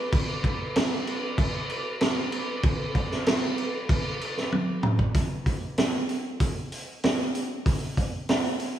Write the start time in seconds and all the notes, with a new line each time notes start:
0.12 kick, crash
0.44 kick, crash
0.76 snare, crash
1.07 crash
1.38 kick, crash
1.70 crash
2.01 snare, crash
2.32 crash
2.63 kick, crash
2.95 kick, crash
3.11 snare
3.26 snare, crash
3.58 crash
3.89 kick, crash
4.21 crash
4.37 snare
4.52 high tom
4.83 mid tom
4.99 kick
5.14 kick, open hi-hat
5.46 kick, open hi-hat
5.78 snare, open hi-hat
6.09 open hi-hat
6.40 kick, open hi-hat
6.72 open hi-hat
7.03 snare, open hi-hat
7.35 open hi-hat
7.66 kick, open hi-hat
7.97 kick, open hi-hat
8.29 snare, open hi-hat
8.60 open hi-hat